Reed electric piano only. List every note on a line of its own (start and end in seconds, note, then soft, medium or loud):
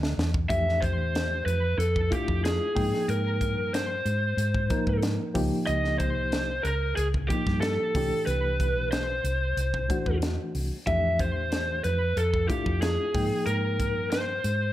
0.49 1.64 E3 medium
0.49 1.64 A3 medium
0.49 1.64 D4 medium
0.49 1.64 G4 medium
2.11 2.76 A3 medium
2.11 2.76 D4 medium
2.11 2.75 E4 medium
2.11 2.76 F4 medium
2.75 3.90 F3 medium
2.75 3.90 A#3 medium
2.75 3.90 D#4 medium
2.75 3.90 G5 medium
4.70 5.33 F3 medium
4.70 5.33 A#3 medium
4.70 5.33 D#4 medium
4.70 5.35 A#4 medium
5.34 6.49 F3 medium
5.34 6.49 A#3 medium
5.34 6.49 D#4 medium
5.34 6.49 G4 medium
7.29 7.94 F3 medium
7.29 7.94 A#3 medium
7.29 7.94 D#4 medium
7.29 7.94 G4 medium
7.95 9.09 E3 medium
7.95 9.10 A3 medium
7.95 9.10 D4 medium
7.95 9.10 G4 medium
9.89 10.75 E3 medium
9.89 10.75 A3 medium
9.89 10.75 D4 medium
9.89 10.76 F#4 medium
10.86 12.01 E3 medium
10.86 12.02 A3 medium
10.86 12.02 D4 medium
10.86 12.02 G4 medium
12.49 13.14 A3 medium
12.49 13.14 D4 medium
12.49 13.14 E4 medium
12.49 13.15 F4 medium
13.14 14.29 F3 medium
13.14 14.29 A#3 medium
13.14 14.30 D#4 medium
13.14 14.30 G5 medium